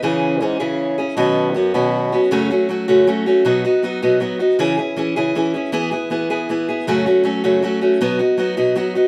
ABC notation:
X:1
M:6/8
L:1/8
Q:3/8=105
K:Bmix
V:1 name="Steel-string acoustic guitar"
[C,E,CEG]2 [E,CEG] [C,E,CEG]2 [CEG] | [B,,D,F,B,CF]2 [F,B,CF] [B,,D,F,B,CF]2 [F,B,CF] | [F,,C,F,A,CF] [F,A,CF] [F,A,CF] [F,,C,F,A,CF] [F,A,CF] [F,A,CF] | [B,,F,B,DF] [B,DF] [F,B,DF] [B,,F,B,DF] [F,B,DF] [B,DF] |
[C,E,CEG] [CEG] [E,CEG] [C,E,CEG] [E,CEG] [CEG] | [E,B,EG] [B,EG] [E,B,EG] [E,B,EG] [E,B,EG] [B,EG] | [F,,C,F,A,CF] [F,A,CF] [F,A,CF] [F,,C,F,A,CF] [F,A,CF] [F,A,CF] | [B,,F,B,DF] [B,DF] [F,B,DF] [B,,F,B,DF] [F,B,DF] [B,DF] |]
V:2 name="Bassoon" clef=bass
C,2 G,, C,3 | B,,2 F,, B,,3 | z6 | z6 |
z6 | z6 | z6 | z6 |]